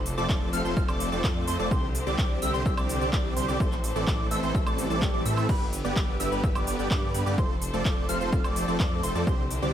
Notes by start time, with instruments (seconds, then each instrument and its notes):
Already playing: detuned saw bass F1, string section F3 C4 A4 C5
0.06 open hi-hat, shaker
0.18 detuned saw bass F1, supersaw synth F3 A3 C4 A4 D5, digital synth lead D6, shaker
0.29 detuned saw bass F1, supersaw synth F3 A3 C4 A4 D5, digital synth lead D6, kick, clap, shaker
0.53 detuned saw bass F1, supersaw synth F3 A3 C4 A4 F5, digital synth lead F6, open hi-hat, shaker
0.65 detuned saw bass F1, supersaw synth F3 A3 C4 A4 C5, digital synth lead C6, shaker
0.77 detuned saw bass F1, supersaw synth F3 A3 C4 A4 F5, digital synth lead F6, kick, shaker
0.88 detuned saw bass F1, supersaw synth F3 A3 C4 A4 D5, digital synth lead D6, high woodblock, shaker
1.00 open hi-hat, shaker
1.12 detuned saw bass F1, supersaw synth F3 A3 C4 A4 D5, digital synth lead D6, shaker
1.24 detuned saw bass F2, supersaw synth F3 A3 C4 A4 D5, digital synth lead D6, kick, clap, shaker
1.47 detuned saw bass F2, supersaw synth F3 A3 C4 A4 C5, digital synth lead C6, open hi-hat, shaker
1.59 detuned saw bass F1, supersaw synth F3 A3 C4 A4 D5, digital synth lead D6, shaker
1.71 detuned saw bass C2, string section D3 G4, supersaw synth D3 G3 C4 G4 C5, digital synth lead C6, kick, shaker
1.95 open hi-hat, shaker
2.07 detuned saw bass C2, supersaw synth D3 G3 C4 G4 D5, digital synth lead D6, shaker
2.18 detuned saw bass C2, supersaw synth D3 G3 C4 G4 D5, digital synth lead D6, kick, clap, shaker
2.42 detuned saw bass C2, supersaw synth D3 G3 C4 G4 E5, digital synth lead E6, open hi-hat, shaker
2.54 detuned saw bass C2, supersaw synth D3 G3 C4 G4 C5, digital synth lead C6, shaker
2.66 detuned saw bass C2, supersaw synth D3 G3 C4 G4 E5, digital synth lead E6, kick, shaker
2.77 detuned saw bass C2, supersaw synth D3 G3 C4 G4 D5, digital synth lead D6, high woodblock, shaker
2.89 open hi-hat, shaker
3.01 detuned saw bass C2, supersaw synth D3 G3 C4 G4 D5, digital synth lead D6, shaker
3.13 detuned saw bass C2, supersaw synth D3 G3 C4 G4 D5, digital synth lead D6, kick, clap, shaker
3.37 detuned saw bass C2, supersaw synth D3 G3 C4 G4 C5, digital synth lead C6, open hi-hat, shaker
3.48 detuned saw bass C2, supersaw synth D3 G3 C4 G4 D5, digital synth lead D6, shaker
3.60 detuned saw bass A1, string section E3 A4, supersaw synth E3 A3 C4 A4 C5, digital synth lead C6, kick, shaker
3.72 clap, shaker
3.84 open hi-hat, shaker
3.96 detuned saw bass A1, supersaw synth E3 A3 C4 A4 D5, digital synth lead D6, shaker
4.07 detuned saw bass A1, supersaw synth E3 A3 C4 A4 D5, digital synth lead D6, kick, clap, shaker
4.31 detuned saw bass A1, supersaw synth E3 A3 C4 A4 E5, digital synth lead E6, open hi-hat, shaker
4.43 detuned saw bass A1, supersaw synth E3 A3 C4 A4 C5, digital synth lead C6, shaker
4.55 detuned saw bass A1, supersaw synth E3 A3 C4 A4 E5, digital synth lead E6, kick, swell, shaker
4.67 detuned saw bass A1, supersaw synth E3 A3 C4 A4 D5, digital synth lead D6, high woodblock, shaker
4.78 open hi-hat, shaker
4.90 detuned saw bass A1, supersaw synth E3 A3 C4 A4 D5, digital synth lead D6, shaker
5.02 kick, clap, shaker
5.14 detuned saw bass A1, supersaw synth E3 A3 C4 A4 D5, digital synth lead D6
5.25 detuned saw bass A2, supersaw synth E3 A3 C4 A4 E5, digital synth lead E6, open hi-hat, shaker
5.37 high woodblock, shaker
5.49 detuned saw bass G1, string section D3 B3 G4 B4, supersaw synth D3 G3 B3 G4 B4, digital synth lead B5, kick, crash, shaker
5.73 open hi-hat, shaker
5.84 detuned saw bass G1, supersaw synth D3 G3 B3 G4 D5, digital synth lead D6, shaker
5.96 detuned saw bass G1, supersaw synth D3 G3 B3 G4 D5, digital synth lead D6, kick, clap, shaker
6.20 detuned saw bass G1, supersaw synth D3 G3 B3 G4 E5, digital synth lead E6, open hi-hat, shaker
6.32 detuned saw bass G1, supersaw synth D3 G3 B3 G4 B4, digital synth lead B5, shaker
6.43 detuned saw bass G1, supersaw synth D3 G3 B3 G4 E5, digital synth lead E6, kick, shaker
6.55 detuned saw bass G1, supersaw synth D3 G3 B3 G4 D5, digital synth lead D6, high woodblock, shaker
6.67 open hi-hat, shaker
6.79 detuned saw bass G1, supersaw synth D3 G3 B3 G4 D5, digital synth lead D6, shaker
6.91 detuned saw bass G2, supersaw synth D3 G3 B3 G4 D5, digital synth lead D6, kick, clap, shaker
7.14 detuned saw bass G2, supersaw synth D3 G3 B3 G4 B4, digital synth lead B5, open hi-hat, shaker
7.26 detuned saw bass G2, supersaw synth D3 G3 B3 G4 D5, digital synth lead D6, shaker
7.38 detuned saw bass F1, string section F3 C4 A4 C5, supersaw synth F3 A3 C4 A4 C5, digital synth lead C6, kick, shaker
7.62 open hi-hat, shaker
7.73 detuned saw bass F1, supersaw synth F3 A3 C4 A4 D5, digital synth lead D6, shaker
7.85 detuned saw bass F1, supersaw synth F3 A3 C4 A4 D5, digital synth lead D6, kick, clap, shaker
8.09 detuned saw bass F1, supersaw synth F3 A3 C4 A4 F5, digital synth lead F6, open hi-hat, shaker
8.21 detuned saw bass F1, supersaw synth F3 A3 C4 A4 C5, digital synth lead C6, shaker
8.32 detuned saw bass F1, supersaw synth F3 A3 C4 A4 F5, digital synth lead F6, kick, shaker
8.44 detuned saw bass F1, supersaw synth F3 A3 C4 A4 D5, digital synth lead D6, high woodblock, shaker
8.56 open hi-hat, shaker
8.68 detuned saw bass F1, supersaw synth F3 A3 C4 A4 D5, digital synth lead D6, shaker
8.80 detuned saw bass F2, supersaw synth F3 A3 C4 A4 D5, digital synth lead D6, kick, clap, shaker
9.03 detuned saw bass F1, supersaw synth F3 A3 C4 A4 C5, digital synth lead C6, open hi-hat, shaker
9.15 detuned saw bass F2, supersaw synth F3 A3 C4 A4 D5, digital synth lead D6, shaker
9.27 detuned saw bass C2, string section D3 G4, supersaw synth D3 G3 C4 G4 C5, digital synth lead C6, kick, shaker
9.51 open hi-hat, shaker
9.62 detuned saw bass C2, supersaw synth D3 G3 C4 G4 D5, digital synth lead D6, shaker